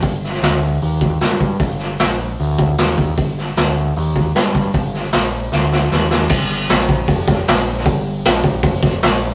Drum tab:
CC |----------------|----------------|----------------|----------------|
HH |o---o---o---o---|o---o---o---o---|o---o---o---o---|o---o-----------|
SD |--ooo-------o---|--o-o-------o---|--o-o-------o---|--o-o---o-o-o-o-|
BD |o---------o---o-|o---------o---o-|o---------o---o-|o---------------|

CC |x---------------|----------------|
HH |----o---o---o---|o---o---o---o---|
SD |----o-----o-o--o|----o-----o-o---|
BD |o-----o-o-o-----|o-----o-o-o-----|